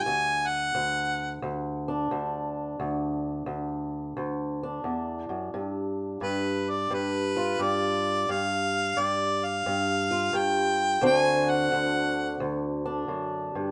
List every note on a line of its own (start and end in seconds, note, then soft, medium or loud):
0.03 0.74 D2 medium
0.03 0.49 G#5 loud
0.48 1.41 F#5 medium
0.75 1.42 D2 medium
1.42 2.10 D2 medium
1.88 4.63 D4 medium
2.11 2.78 D2 medium
2.80 3.45 D2 medium
3.46 4.15 D2 medium
4.17 4.84 D2 medium
4.63 7.36 D4 soft
4.84 5.29 E2 medium
5.29 5.53 F#2 medium
5.54 6.21 G2 medium
6.21 6.90 G2 medium
6.21 6.72 B4 medium
6.70 6.95 D5 medium
6.90 7.58 G2 medium
6.90 7.63 B4 medium
7.36 8.26 F4 medium
7.59 8.25 G2 medium
7.59 8.33 D5 medium
8.29 8.96 G2 medium
8.29 9.01 F5 loud
8.97 9.65 G2 medium
8.97 9.47 D5 medium
9.45 10.38 F5 medium
9.66 10.32 G2 medium
10.11 11.00 F4 medium
10.33 10.99 G2 medium
10.33 11.04 G5 loud
11.01 11.71 D2 medium
11.01 13.71 D3 medium
11.01 13.71 C4 medium
11.01 12.84 D4 medium
11.01 13.71 F#4 medium
11.06 11.17 G5 loud
11.17 11.52 G#5 loud
11.50 12.41 F#5 medium
11.72 12.39 D2 medium
12.40 13.08 D2 medium
12.86 13.71 D4 medium
13.08 13.54 F#2 medium
13.55 13.71 G2 medium